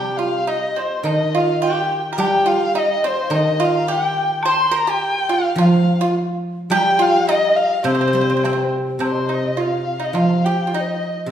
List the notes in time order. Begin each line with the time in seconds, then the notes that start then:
Already playing: C3 G3 C4 G4 G5
0.17 F4 F5
0.40 F5
0.47 D#4 D#5 F5
0.51 D#5
0.76 C4 C5
1.03 D#3 D#4 D#5, high woodblock
1.35 F4 F5
1.62 G4 G5
2.13 A#4
2.17 G3 G4 G5, high woodblock
2.46 F4 F5
2.74 D#4 F5
2.79 D#5
3.01 C4 C5
3.06 C5
3.23 F5
3.29 D#3 D#4 D#5, high woodblock
3.35 D#5
3.60 F4
3.64 F5
3.78 A#5
3.85 G4 A#5
3.89 G5
4.42 C5 C6, high woodblock
4.47 C6
4.71 A#4 C5
4.76 A#5
4.87 G4 G5 A#5
5.29 F4
5.33 F5
5.56 F3 F4, high woodblock
5.60 F5
6.01 F4 F5
6.70 G3 G4 G5, high woodblock
6.77 A#5
6.85 G5
6.99 F4 F5
7.28 D#4 D#5, low woodblock
7.56 F5
7.84 C3 C4 C5, high woodblock
7.95 C4
8.01 C4
8.08 C4
8.13 G3 C4
8.21 C4
8.30 C4
8.37 C4
8.44 C4, high woodblock, low woodblock
8.53 C4
8.99 C3 C4, high woodblock
9.03 C5
9.12 D#5
9.20 C5
9.28 D#4 D#5
9.34 C5 D#5
9.57 F4 F5, low woodblock
10.00 D#4 D#5
10.04 D#5
10.13 F3 F4 F5, high woodblock
10.44 G4 G5
10.67 F4
10.73 D#4 D#5
10.80 C5
10.88 D#5
11.26 C3